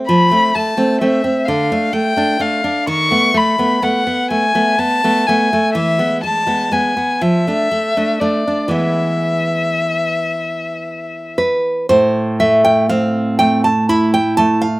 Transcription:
0.07 0.30 F3 medium
0.07 0.56 B5 medium
0.31 0.51 A3 medium
0.31 0.52 C4 medium
0.55 0.76 A3 medium
0.55 1.00 A5 medium
0.77 0.98 A3 soft
0.77 0.98 C4 medium
1.01 1.21 A3 medium
1.01 1.22 C4 medium
1.01 1.47 E5 medium
1.24 1.47 C4 medium
1.45 1.70 D3 medium
1.45 1.94 F5 medium
1.72 1.92 A3 medium
1.72 1.92 D4 medium
1.93 2.16 A3 medium
1.93 2.42 G5 medium
2.17 2.38 A3 medium
2.17 2.38 D4 medium
2.39 2.61 A3 medium
2.39 2.62 D4 medium
2.39 2.88 F5 medium
2.64 2.88 D4 medium
2.87 3.11 D#3 medium
2.87 3.38 C#6 medium
3.11 3.33 A3 medium
3.11 3.34 B3 medium
3.34 3.57 A3 medium
3.34 3.84 B5 medium
3.58 3.81 A3 medium
3.58 3.81 B3 medium
3.82 4.04 A3 medium
3.82 4.04 B3 medium
3.82 4.30 F#5 medium
4.07 4.44 B3 medium
4.30 4.54 A3 medium
4.30 4.80 G#5 medium
4.55 4.76 A3 medium
4.55 4.76 B3 medium
4.79 5.03 B3 medium
4.79 5.28 A5 medium
5.04 5.25 A3 medium
5.04 5.25 B3 medium
5.27 5.49 A3 medium
5.27 5.49 B3 medium
5.27 5.73 G#5 medium
5.53 5.75 A3 medium
5.74 5.98 E3 medium
5.74 6.21 E5 medium
5.99 6.20 G#3 medium
5.99 6.20 B3 medium
6.23 6.45 G#3 soft
6.23 6.73 A5 medium
6.47 6.68 G#3 medium
6.47 6.69 B3 medium
6.71 6.93 G#3 medium
6.71 6.94 B3 medium
6.71 7.23 G#5 medium
6.97 7.21 B3 medium
7.21 7.45 F3 medium
7.21 8.22 E5 medium
7.47 7.68 A3 soft
7.47 7.69 D4 medium
7.71 7.96 A3 medium
7.97 8.18 A3 soft
7.97 8.18 D4 medium
8.20 8.43 A3 medium
8.20 8.43 D4 medium
8.20 8.73 D5 medium
8.47 8.71 D4 soft
8.68 11.85 E3 medium
8.68 11.86 G#3 soft
8.68 11.87 B3 soft
8.68 11.39 E5 medium
11.38 11.88 B4 medium
11.89 14.80 A2 medium
11.89 12.38 C5 medium
12.40 12.89 A3 medium
12.40 12.64 E5 medium
12.65 12.89 G5 medium
12.89 13.68 C4 medium
12.89 13.37 F5 medium
13.39 14.17 A3 medium
13.39 13.63 G5 loud
13.64 13.88 A5 medium
13.89 14.66 E4 medium
13.89 14.13 B5 loud
14.14 14.37 G5 loud
14.37 14.80 A3 medium
14.37 14.61 A5 loud
14.62 14.80 F5 medium

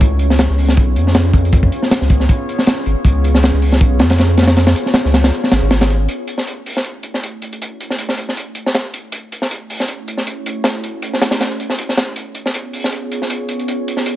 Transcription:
0.01 0.48 C#2 loud
0.01 kick loud
0.01 closed hi-hat medium
0.19 closed hi-hat medium
0.30 snare medium
0.39 snare loud
0.39 closed hi-hat medium
0.50 0.79 C#2 medium
0.58 1.51 B3 medium
0.58 1.51 C#4 medium
0.58 1.51 F4 medium
0.58 1.51 G#4 medium
0.58 1.51 C#5 medium
0.58 open hi-hat medium
0.69 snare medium
0.77 0.97 B1 loud
0.77 kick loud
0.77 closed hi-hat medium
0.96 1.71 F2 loud
0.96 closed hi-hat medium
1.07 snare soft
1.15 snare loud
1.15 closed hi-hat medium
1.33 kick loud
1.33 closed hi-hat medium
1.45 closed hi-hat soft
1.52 kick loud
1.52 closed hi-hat medium
1.63 kick loud
1.72 closed hi-hat medium
1.82 snare soft
1.91 snare loud
1.91 closed hi-hat medium
2.01 2.28 C#2 medium
2.01 snare soft
2.10 3.03 B3 medium
2.10 3.03 C#4 medium
2.10 3.03 F4 medium
2.10 3.03 G#4 medium
2.10 3.03 C#5 medium
2.10 kick medium
2.10 closed hi-hat medium
2.20 snare soft
2.29 kick loud
2.29 closed hi-hat medium
2.49 closed hi-hat medium
2.59 snare soft
2.67 snare loud
2.67 closed hi-hat medium
2.86 2.95 G#1 medium
2.86 closed hi-hat medium
3.05 3.52 C#2 loud
3.05 kick loud
3.05 closed hi-hat medium
3.24 closed hi-hat medium
3.35 snare medium
3.43 snare loud
3.43 closed hi-hat medium
3.53 3.83 C#2 medium
3.62 4.55 B3 medium
3.62 4.55 C#4 medium
3.62 4.55 F4 medium
3.62 4.55 G#4 medium
3.62 4.55 C#5 medium
3.62 open hi-hat medium
3.72 snare medium
3.81 4.02 B1 loud
3.81 kick loud
3.81 closed hi-hat medium
3.99 4.75 F2 loud
3.99 snare loud
3.99 closed hi-hat medium
4.10 snare loud
4.10 closed hi-hat medium
4.18 snare loud
4.18 closed hi-hat medium
4.37 snare medium
4.37 closed hi-hat medium
4.43 snare medium
4.43 closed hi-hat medium
4.47 snare loud
4.47 closed hi-hat medium
4.56 snare loud
4.56 closed hi-hat medium
4.67 snare loud
4.67 closed hi-hat medium
4.76 closed hi-hat medium
4.86 snare soft
4.94 snare loud
4.94 closed hi-hat medium
5.05 5.31 C#2 medium
5.05 snare soft
5.14 6.07 B3 medium
5.14 6.07 C#4 medium
5.14 6.07 F4 medium
5.14 6.07 G#4 medium
5.14 6.07 C#5 medium
5.14 snare loud
5.14 closed hi-hat medium
5.24 snare loud
5.24 closed hi-hat medium
5.32 closed hi-hat medium
5.44 snare soft
5.51 5.61 G#1 loud
5.51 snare loud
5.51 closed hi-hat medium
5.62 6.08 G#1 loud
5.71 snare loud
5.71 closed hi-hat medium
5.81 snare loud
5.81 closed hi-hat medium
5.90 closed hi-hat medium
6.09 9.10 A3 medium
6.09 9.10 C#4 medium
6.09 9.11 E4 medium
6.09 9.10 F#4 medium
6.09 9.11 C#5 loud
6.09 closed hi-hat medium
6.27 closed hi-hat medium
6.38 snare soft
6.47 closed hi-hat medium
6.66 open hi-hat medium
6.77 snare medium
6.84 closed hi-hat medium
7.03 closed hi-hat medium
7.14 snare soft
7.23 closed hi-hat medium
7.42 closed hi-hat medium
7.53 closed hi-hat soft
7.62 closed hi-hat medium
7.80 closed hi-hat medium
7.90 snare soft
7.99 closed hi-hat medium
8.09 snare soft
8.17 closed hi-hat medium
8.29 snare soft
8.37 closed hi-hat medium
8.55 closed hi-hat medium
8.66 snare medium
8.75 snare medium
8.75 closed hi-hat medium
8.94 closed hi-hat medium
9.12 12.14 A3 medium
9.12 12.14 C#4 medium
9.12 12.14 E4 medium
9.12 12.14 F#4 medium
9.12 12.14 C#5 loud
9.12 closed hi-hat medium
9.32 closed hi-hat medium
9.42 snare soft
9.51 closed hi-hat medium
9.70 open hi-hat medium
9.80 snare soft
9.88 closed hi-hat medium
10.08 closed hi-hat medium
10.17 snare soft
10.27 closed hi-hat medium
10.46 closed hi-hat medium
10.64 snare medium
10.64 closed hi-hat medium
10.84 closed hi-hat medium
11.02 closed hi-hat medium
11.13 snare soft
11.22 snare loud
11.22 closed hi-hat medium
11.31 snare loud
11.31 closed hi-hat medium
11.41 snare loud
11.41 closed hi-hat medium
11.51 closed hi-hat soft
11.60 closed hi-hat medium
11.70 snare soft
11.78 closed hi-hat medium
11.89 snare soft
11.97 snare loud
11.97 closed hi-hat medium
12.16 14.16 B3 medium
12.16 14.16 C#4 medium
12.16 14.16 F4 medium
12.16 14.16 G#4 medium
12.16 14.16 C#5 loud
12.16 closed hi-hat medium
12.35 closed hi-hat medium
12.46 snare soft
12.54 closed hi-hat medium
12.73 open hi-hat medium
12.84 snare medium
12.92 closed hi-hat medium
13.11 closed hi-hat medium
13.22 snare soft
13.30 closed hi-hat medium
13.49 closed hi-hat medium
13.59 closed hi-hat soft
13.68 closed hi-hat medium
13.88 closed hi-hat medium
13.97 snare soft
14.06 closed hi-hat medium

